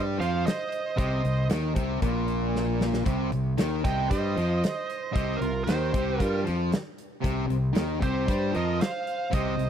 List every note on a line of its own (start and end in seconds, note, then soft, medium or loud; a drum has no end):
0.00 0.19 G2 medium
0.00 0.18 G3 loud
0.18 0.44 F2 medium
0.18 0.44 F3 medium
0.18 0.44 C5 medium
0.18 0.46 F5 medium
0.18 closed hi-hat medium
0.46 0.95 C5 medium
0.46 0.97 D#5 medium
0.46 snare loud
0.46 closed hi-hat medium
0.72 closed hi-hat medium
0.97 1.22 C2 medium
0.97 1.22 C3 loud
0.97 1.47 C5 medium
0.97 1.47 D#5 medium
0.97 kick medium
0.97 closed hi-hat medium
1.23 1.49 C2 medium
1.23 1.44 C3 medium
1.23 closed hi-hat medium
1.50 1.75 D#2 medium
1.50 1.74 D#3 loud
1.50 snare loud
1.50 closed hi-hat medium
1.75 2.01 C2 medium
1.75 2.01 C3 medium
1.75 kick loud
1.75 closed hi-hat medium
2.02 3.03 A#1 medium
2.02 3.05 A#2 medium
2.02 kick medium
2.02 closed hi-hat medium
2.28 closed hi-hat medium
2.56 snare medium
2.81 snare medium
2.94 snare medium
3.05 3.31 C2 medium
3.05 3.31 C3 medium
3.05 kick loud
3.05 closed hi-hat medium
3.32 3.58 C2 medium
3.32 3.53 C3 medium
3.32 closed hi-hat medium
3.57 3.83 D#2 medium
3.57 3.83 D#3 loud
3.57 snare loud
3.57 closed hi-hat medium
3.85 4.09 C2 medium
3.85 4.10 C3 medium
3.85 4.09 D#5 medium
3.85 4.09 G5 medium
3.85 kick loud
3.85 closed hi-hat medium
4.09 4.35 G2 medium
4.09 4.36 G3 medium
4.09 5.10 C5 medium
4.09 5.12 D#5 medium
4.09 kick loud
4.09 closed hi-hat medium
4.36 4.61 F2 medium
4.36 4.62 F3 medium
4.36 closed hi-hat medium
4.64 snare loud
4.64 closed hi-hat medium
4.90 closed hi-hat medium
5.13 5.40 C2 medium
5.13 5.39 C3 loud
5.13 5.39 C5 medium
5.13 5.38 D#5 medium
5.13 kick loud
5.13 closed hi-hat medium
5.37 5.64 A#4 medium
5.41 5.66 C2 medium
5.41 5.62 C3 medium
5.41 5.66 F4 medium
5.41 closed hi-hat medium
5.64 5.92 D#3 loud
5.64 6.21 G4 medium
5.64 6.20 C5 medium
5.64 closed hi-hat medium
5.69 5.92 D#2 medium
5.69 snare loud
5.94 6.18 C2 medium
5.94 6.19 C3 medium
5.94 kick loud
5.94 closed hi-hat medium
6.19 6.44 G2 loud
6.19 6.45 G3 loud
6.19 6.42 F4 medium
6.19 6.40 A#4 medium
6.19 kick loud
6.19 closed hi-hat medium
6.44 6.70 F3 medium
6.44 closed hi-hat medium
6.48 6.71 F2 medium
6.72 snare loud
6.72 closed hi-hat medium
6.98 closed hi-hat medium
7.22 7.49 C2 medium
7.22 7.46 C3 medium
7.22 kick loud
7.22 closed hi-hat medium
7.47 7.75 C2 medium
7.47 7.70 C3 medium
7.47 closed hi-hat medium
7.73 8.00 D#2 medium
7.73 8.00 D#3 loud
7.73 snare loud
7.73 closed hi-hat medium
8.00 8.27 C2 medium
8.00 8.27 C3 loud
8.00 8.51 G4 medium
8.00 8.57 C5 medium
8.00 kick loud
8.00 closed hi-hat medium
8.27 8.53 G2 loud
8.27 8.53 G3 medium
8.27 kick loud
8.27 closed hi-hat medium
8.52 8.79 F3 medium
8.52 8.79 A#4 medium
8.52 closed hi-hat medium
8.56 8.80 F2 medium
8.56 8.82 D#5 medium
8.80 9.29 C5 medium
8.80 9.30 F5 loud
8.80 snare loud
8.80 closed hi-hat medium
9.07 closed hi-hat medium
9.31 9.58 C2 loud
9.31 9.56 C3 loud
9.31 9.70 C5 medium
9.31 9.70 D#5 medium
9.31 kick loud
9.31 closed hi-hat medium
9.57 9.70 C2 medium
9.57 9.70 C3 medium
9.57 closed hi-hat medium